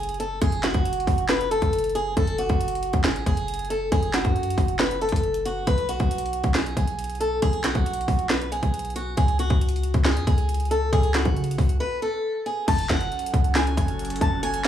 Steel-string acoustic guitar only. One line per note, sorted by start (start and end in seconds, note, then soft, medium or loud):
0.00 0.17 G#4 medium
0.20 0.40 A4 medium
0.41 0.62 G#4 loud
0.64 1.25 F#4 medium
1.29 1.50 B4 medium
1.51 1.92 A4 medium
1.95 2.16 G#4 medium
2.17 2.37 A4 loud
2.39 3.00 F#4 medium
3.04 3.25 G#4 medium
3.26 3.67 G#4 medium
3.70 3.91 A4 medium
3.92 4.12 G#4 loud
4.14 4.76 F#4 medium
4.80 5.00 B4 medium
5.02 5.43 A4 medium
5.45 5.66 F#4 medium
5.67 5.88 B4 loud
5.89 6.51 F#4 medium
6.55 6.75 G#4 medium
6.77 7.18 G#4 medium
7.20 7.41 A4 medium
7.42 7.63 G#4 loud
7.64 8.26 F#4 medium
8.30 8.50 B4 medium
8.52 8.93 G#4 medium
8.96 9.16 F#4 medium
9.17 9.38 G#4 loud
9.39 10.01 F#4 medium
10.05 10.26 G#4 medium
10.27 10.68 G#4 medium
10.71 10.91 A4 medium
10.93 11.13 G#4 loud
11.15 11.76 F#4 medium
11.80 12.01 B4 medium
12.02 12.43 A4 medium
12.46 12.67 G#4 medium
12.68 12.88 A5 medium
12.90 13.51 F#5 medium
13.56 13.76 G#5 medium
13.77 14.18 G#5 medium
14.21 14.42 A5 medium
14.43 14.64 G#5 loud